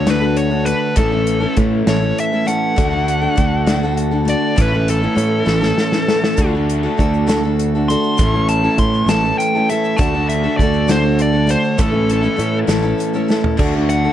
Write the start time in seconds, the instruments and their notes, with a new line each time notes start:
Already playing: picked electric bass D2, overdriven electric guitar D3 A3 D4 F#4
0.06 steel-string acoustic guitar D3 A3 D4 F#4 A4, lead electric guitar B4, snare, closed hi-hat
0.21 steel-string acoustic guitar D4 F#4 A4
0.37 lead electric guitar C#5, closed hi-hat
0.51 steel-string acoustic guitar D4 F#4 A4
0.65 steel-string acoustic guitar A3 D4 F#4 A4, lead electric guitar B4, closed hi-hat
0.96 picked electric bass A1, steel-string acoustic guitar A2 E3 A3 C#4 E4 A4, lead electric guitar A4, kick, closed hi-hat
1.12 steel-string acoustic guitar A3 C#4 E4 A4
1.27 closed hi-hat
1.40 steel-string acoustic guitar A3 C#4 E4 A4
1.57 picked electric bass A2, steel-string acoustic guitar A3 C#4 E4 A4, kick, closed hi-hat
1.87 picked electric bass A1, steel-string acoustic guitar A2 E3 A3 C#4 E4 A4, lead electric guitar C#5, snare, closed hi-hat
2.02 steel-string acoustic guitar A3 C#4 E4 A4
2.18 lead electric guitar E5, closed hi-hat
2.32 steel-string acoustic guitar A3 C#4 E4 A4
2.45 steel-string acoustic guitar A3 C#4 E4 A4, lead electric guitar F#5, closed hi-hat
2.76 picked electric bass D2, steel-string acoustic guitar D3 A3 D4 F#4 A4, kick, closed hi-hat
2.90 steel-string acoustic guitar D4 F#4 A4
3.08 closed hi-hat
3.21 steel-string acoustic guitar D4 F#4 A4
3.36 picked electric bass D2, steel-string acoustic guitar A3 D4 F#4 A4, kick, closed hi-hat
3.66 steel-string acoustic guitar D3 A3 D4 F#4 A4, snare, closed hi-hat
3.83 steel-string acoustic guitar D4 F#4 A4
3.97 closed hi-hat
4.11 steel-string acoustic guitar D4 F#4 A4
4.25 steel-string acoustic guitar A3 D4 F#4 A4, closed hi-hat
4.30 lead electric guitar D5
4.56 picked electric bass A1, steel-string acoustic guitar A2 E3 A3 C#4 E4 A4, kick, closed hi-hat
4.62 lead electric guitar B4
4.72 steel-string acoustic guitar A3 C#4 E4 A4
4.88 lead electric guitar A4, closed hi-hat
5.02 steel-string acoustic guitar A3 C#4 E4 A4
5.15 picked electric bass A2, steel-string acoustic guitar A3 C#4 E4 A4, closed hi-hat
5.45 picked electric bass A1, steel-string acoustic guitar A2 E3 A3 C#4 E4 A4, snare
5.61 steel-string acoustic guitar A3 C#4 E4 A4, snare
5.78 snare
5.92 steel-string acoustic guitar A3 C#4 E4 A4, snare
6.08 steel-string acoustic guitar A3 C#4 E4 A4, snare
6.24 snare
6.37 picked electric bass D2, steel-string acoustic guitar D3 A3 D4 F#4 A4, kick, closed hi-hat, shaker
6.55 steel-string acoustic guitar D4 F#4 A4
6.70 closed hi-hat
6.83 steel-string acoustic guitar D4 F#4 A4
6.97 picked electric bass D2, steel-string acoustic guitar A3 D4 F#4 A4, kick, closed hi-hat
7.14 shaker
7.27 steel-string acoustic guitar D3 A3 D4 F#4 A4, snare, closed hi-hat, shaker
7.43 steel-string acoustic guitar D4 F#4 A4
7.59 closed hi-hat
7.75 steel-string acoustic guitar D4 F#4 A4
7.88 steel-string acoustic guitar A3 D4 F#4 A4, lead electric guitar C6, closed hi-hat
8.03 shaker
8.18 picked electric bass A1, steel-string acoustic guitar A2 E3 A3 C#4 E4 A4, kick, closed hi-hat, shaker
8.33 steel-string acoustic guitar A3 C#4 E4 A4
8.49 lead electric guitar A5, closed hi-hat
8.63 steel-string acoustic guitar A3 C#4 E4 A4
8.78 picked electric bass A2, steel-string acoustic guitar A3 C#4 E4 A4, lead electric guitar C6, kick, closed hi-hat
8.94 shaker
9.06 picked electric bass A1, steel-string acoustic guitar A2 E3 A3 C#4 E4, lead electric guitar A5, snare, closed hi-hat, shaker
9.11 steel-string acoustic guitar A4
9.23 steel-string acoustic guitar A3 C#4 E4 A4
9.38 lead electric guitar G5, closed hi-hat
9.55 steel-string acoustic guitar A3 C#4 E4 A4
9.69 steel-string acoustic guitar A3 C#4 E4 A4, lead electric guitar E5, closed hi-hat
9.84 shaker
9.97 picked electric bass D2, steel-string acoustic guitar D3 A3 D4 F#4, lead electric guitar A5, kick, closed hi-hat, shaker
10.01 steel-string acoustic guitar A4
10.14 steel-string acoustic guitar D4 F#4 A4
10.29 lead electric guitar E5, closed hi-hat
10.44 steel-string acoustic guitar D4 F#4 A4
10.57 picked electric bass D2, steel-string acoustic guitar A3, lead electric guitar D5, kick, closed hi-hat
10.61 steel-string acoustic guitar D4 F#4 A4
10.73 shaker
10.88 steel-string acoustic guitar D3 A3 D4 F#4 A4, lead electric guitar C5, snare, closed hi-hat, shaker
11.04 steel-string acoustic guitar D4 F#4 A4
11.19 lead electric guitar D5, closed hi-hat
11.33 steel-string acoustic guitar D4 F#4 A4
11.47 steel-string acoustic guitar A3 D4 F#4 A4, lead electric guitar C5, closed hi-hat
11.64 shaker
11.78 picked electric bass A1, steel-string acoustic guitar A2 E3 A3 C#4 E4 A4, lead electric guitar A4, kick, closed hi-hat, shaker
11.92 steel-string acoustic guitar A3 C#4 E4 A4
12.10 lead electric guitar A4, closed hi-hat
12.21 steel-string acoustic guitar A3 C#4 E4 A4, shaker
12.36 picked electric bass A2, steel-string acoustic guitar A3 C#4 E4 A4, closed hi-hat, shaker
12.67 picked electric bass A1, steel-string acoustic guitar A2 E3 A3 C#4 E4 A4, snare, closed hi-hat, shaker
12.82 steel-string acoustic guitar A3 C#4 E4 A4, shaker
12.98 closed hi-hat, shaker
13.14 steel-string acoustic guitar A3 C#4 E4 A4, shaker
13.28 steel-string acoustic guitar A3 C#4 E4 A4, snare, shaker
13.44 floor tom
13.57 picked electric bass D2, steel-string acoustic guitar D3 A3 D4 F#4 A4, kick, crash
13.75 steel-string acoustic guitar D4 F#4 A4
13.89 lead electric guitar F#5, closed hi-hat
14.04 steel-string acoustic guitar D4 F#4 A4